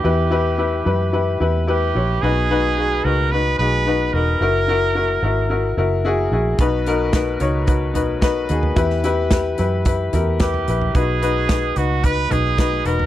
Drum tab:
HH |----------------|----------------|----------------|x-x-x-x-x-x-x-x-|
SD |----------------|----------------|----------------|----o-------o---|
FT |----------------|----------------|----------------|----------o----o|
BD |----------------|----------------|----------------|o---o---o---o---|

HH |x-x-x-x-x-x-x-x-|x-x-x-x-x-x-x-x-|
SD |-o--o-------o---|----o-------o---|
FT |----------o--o-o|----------o----o|
BD |o---o---o---o---|o---o---o---o---|